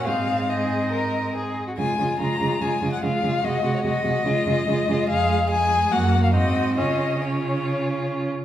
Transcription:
X:1
M:4/4
L:1/16
Q:1/4=142
K:Db
V:1 name="Violin"
f4 e8- e2 z2 | a4 b4 a3 g f4 | e3 d e12 | f4 a4 g3 f e4 |
e4 d8 z4 |]
V:2 name="Violin"
A4 A4 B4 A3 G | F2 F2 F2 F2 F2 F2 F2 F2 | G2 G2 G2 G2 F2 F2 F2 F2 | A4 A4 G4 G4 |
F4 F8- F2 z2 |]
V:3 name="Viola" clef=bass
C12- C2 z2 | A,2 A,2 A,2 A,2 A,2 A,2 A,2 A,2 | A,2 A,2 A,2 A,2 A,2 A,2 A,2 A,2 | A,4 A,4 B,4 C4 |
D4 D8- D2 z2 |]
V:4 name="Cello" clef=bass
A,,12- A,,2 z2 | D,2 D,2 D,2 D,2 D,2 D,2 D,2 D,2 | C,2 C,2 C,2 C,2 D,2 D,2 D,2 D,2 | F,,8 G,,4 A,,4 |
D,12- D,2 z2 |]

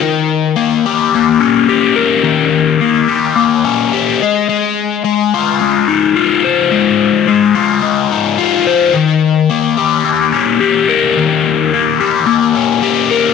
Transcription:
X:1
M:4/4
L:1/8
Q:1/4=108
K:Ebmix
V:1 name="Overdriven electric guitar"
E,2 B, G B, D G B | E,2 B, G B, D G A, | A,2 A, F A, E F c | A,2 A, F A, E F c |
E,2 B, G B, D G B | E,2 B, G B, D G B |]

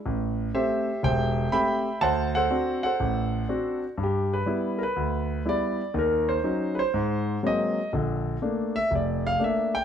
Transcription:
X:1
M:4/4
L:1/8
Q:"Swing" 1/4=122
K:G
V:1 name="Grand piano"
z2 [Gce]2 [ceg]2 [egb]2 | [cfa] [Acf]2 [Acf]4 z | G B2 [_B=B]3 d2 | _B c2 [=Bc]3 _e2 |
z3 e d =f e g |]
V:2 name="Grand piano"
A,,,2 [A,C] z E,,,2 [A,CG] z | D,,2 [CDF] z A,,,2 [CDF] z | G,,2 [G,B,E] z D,,2 [G,B,E] z | [_E,,_E,]2 [_G,_D_E] z _A,,2 [G,_A,_B,C] z |
[_B,,,D,]2 [A,_B,D] z =F,,,2 [A,B,D] z |]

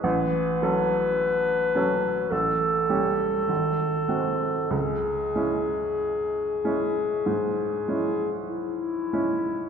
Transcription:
X:1
M:4/4
L:1/8
Q:1/4=50
K:C#m
V:1 name="Clarinet"
B4 A4 | G6 E2 |]
V:2 name="Grand piano"
A,,, [F,CA]2 [F,CA] A,,, [=G,C=G] ^G,,, [^G,^B,F] | C,, [G,CE]2 [G,CE] G,, [G,CE]2 [G,CE] |]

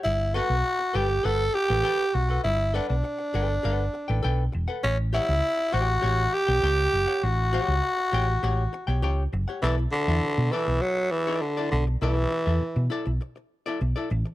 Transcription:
X:1
M:4/4
L:1/16
Q:1/4=100
K:Bm
V:1 name="Hollow-body jazz guitar"
z2 [ABf] z3 [ABg] z [ABf] z2 [ABg] [ABg] z2 [ABf] | z2 [ABf] z3 [ABg] z [ABf] z2 [ABg] [ABg] z2 [ABf] | z2 [Gcf] z3 [Gcg] z [Gcf] z2 [Gcg] [Gcg] z2 [Gcf] | z2 [Gcf] z3 [Gcg] z [Gcf] z2 [Gcg] [Gcg] z2 [Gcf] |
[EAd] z2 [EAe] z2 [EAd] z4 [EAd] z [EAd] z2 | [EAd] z2 [EAe] z2 [EAd] z4 [EAd] z [EAd] z2 |]
V:2 name="Tenor saxophone"
E2 F4 G2 A2 G4 F2 | E2 D D8- D3 z2 | C2 E4 F4 G6 | F12 z4 |
E,2 D,4 E,2 F,2 E,2 D,2 D,2 | E,6 z8 z2 |]
V:3 name="Fingered electric bass" clef=bass
G,,,3 B,,, z2 G,,,2 G,,,2 z A,,, z2 B,,,2 | G,,,3 B,,, z2 G,,,2 G,,,2 z A,,, B,,,2 E,,, z | A,,,3 C,, z2 A,,,2 A,,,2 z B,,, C,,2 F,,, z | A,,,3 C,, z2 A,,,2 A,,,2 z B,,, C,,2 F,,, z |
B,,,2 z E,, z B,, z B,,, z6 B,,,2 | B,,,2 z E,, z B,, z B,,, z4 B,,, z A,,, z |]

